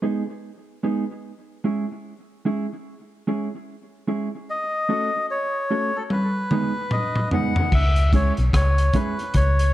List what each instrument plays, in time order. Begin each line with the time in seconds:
0.02 clean electric guitar G#3 B3 D#4 G#4
0.27 muted clean electric guitar stroke
0.83 clean electric guitar G#3 B3 D#4 G#4
1.64 clean electric guitar G#3 C#4 E4 G#4
2.45 clean electric guitar G#3 C#4 E4 G#4
3.27 clean electric guitar G#3 C#4 E4 G#4
4.07 clean electric guitar G#3 C#4 E4 G#4
4.50 melodica D#5
4.89 clean electric guitar A3 C#4 F#4 A4
5.31 melodica C#5
5.71 clean electric guitar A3 C#4 F#4 A4
5.96 melodica A4
6.10 melodica B4, high tom
6.51 clean electric guitar G#3 B3 D#4 G#4, mid tom
6.76 muted clean electric guitar stroke
6.91 melodica D#5, mid tom
7.16 mid tom
7.31 clean electric guitar G#3 B3 D#4 G#4, melodica F#5, floor tom
7.56 floor tom
7.72 fingered electric bass C#2, melodica E5, kick, crash
7.96 closed hi-hat
8.13 clean electric guitar G#3 C#4 E4 G#4, melodica C#5, kick, closed hi-hat
8.37 fingered electric bass B1, closed hi-hat
8.53 fingered electric bass C#2, melodica C#5, kick, cross-stick, closed hi-hat
8.78 closed hi-hat
8.93 clean electric guitar G#3 C#4 E4 G#4, melodica B4, kick, closed hi-hat
9.19 closed hi-hat
9.34 fingered electric bass C#2, melodica C#5, kick, closed hi-hat
9.59 closed hi-hat